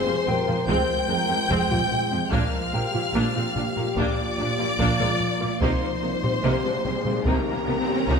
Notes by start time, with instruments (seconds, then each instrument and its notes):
Already playing: ambient pad F3 G#3 F4 C5, french horn section G#4, violin section C5 C6
0.07 cello section F2, viola section G3 A#3, synth arpeggio sound C4
0.27 double bass section F1, cello section F2, viola section G#3 C4, synth arpeggio sound C4, grand piano G4 G5, french horn section A#4, taiko low-mid
0.47 cello section F2, viola section F3 G#3, synth arpeggio sound F4, taiko low-mid
0.68 double bass section F1, cello section F2, synth arpeggio sound F3, viola section G#3 C4, french horn section C5, violin section G5 G6, taiko
1.08 double bass section F1, cello section F2, viola section G#3 C4, synth arpeggio sound G#3, french horn section A#4
1.29 cello section F2, viola section F3 G#3, synth arpeggio sound C4
1.49 double bass section F1, cello section F2, synth arpeggio sound F3, viola section G#3 C4, french horn section C5, taiko
1.70 cello section F2, viola section G3 A#3, synth arpeggio sound F4, taiko low-mid
1.91 french horn section G#3, taiko low-mid
2.11 cello section F2, viola section F3 G#3, synth arpeggio sound C4
2.31 double bass section A#1, cello section A#2, ambient pad F3 A#3 F4 D5, viola section A#3 D4, synth arpeggio sound A#3, french horn section A#4, violin section F5 F6, taiko
2.73 double bass section A#1, cello section A#2, viola section A#3 D4, french horn section G4, synth arpeggio sound A#4, grand piano G5
2.94 cello section A#2, viola section F3 A#3, synth arpeggio sound F4, taiko low-mid
3.14 double bass section A#1, cello section A#2, viola section A#3 D4, synth arpeggio sound A#3
3.35 cello section A#2, viola section G#3 C4, synth arpeggio sound F4
3.56 double bass section A#1, cello section A#2, viola section A#3 D4, synth arpeggio sound F4, taiko low-mid
3.77 cello section A#2, viola section F3 A#3, synth arpeggio sound A#4, taiko low-mid
3.97 double bass section A#1, cello section A#2, synth arpeggio sound A#3, viola section A#3 D4, violin section D5 D6, taiko
4.37 double bass section A#1, cello section A#2, viola section A#3 D4, synth arpeggio sound D4
4.59 cello section A#2, viola section F3 A#3, synth arpeggio sound F4
4.79 double bass section A#1, cello section A#2, viola section A#3 D4, synth arpeggio sound A#3, french horn section F4, grand piano F5, taiko
5.00 cello section A#2, viola section G#3 C4, synth arpeggio sound A#4, taiko low-mid
5.20 taiko low-mid
5.40 cello section A#2, viola section F3 A#3, synth arpeggio sound F4
5.61 double bass section C2, synth arpeggio sound C3, cello section C3, ambient pad D#3 A#3 D#4 C5, viola section A#3 D#4, french horn section D#4, violin section C5 C6, taiko, riser
6.02 double bass section C2, cello section C3, viola section A#3 D#4, synth arpeggio sound A#3
6.23 cello section C3, viola section G3 C4, synth arpeggio sound G3, taiko low-mid
6.43 double bass section C2, cello section C3, synth arpeggio sound C3, viola section A#3 D#4, french horn section G4
6.65 cello section C3, synth arpeggio sound G3, viola section G#3 D4
6.84 double bass section C2, cello section C3, synth arpeggio sound G3, viola section A#3 D#4, french horn section G#4, taiko low-mid
7.05 cello section C3, viola section G3 C4, synth arpeggio sound A#3, taiko low-mid
7.25 double bass section C2, cello section C3, synth arpeggio sound C3, viola section A#3 D#4, french horn section G4, violin section A#4 A#5, taiko
7.66 double bass section C2, cello section C3, synth arpeggio sound D#3, viola section A#3 D#4
7.88 cello section C3, synth arpeggio sound G3, viola section G3 C4
8.07 double bass section C2, synth arpeggio sound C3, cello section C3, viola section A#3 D#4, french horn section F4, taiko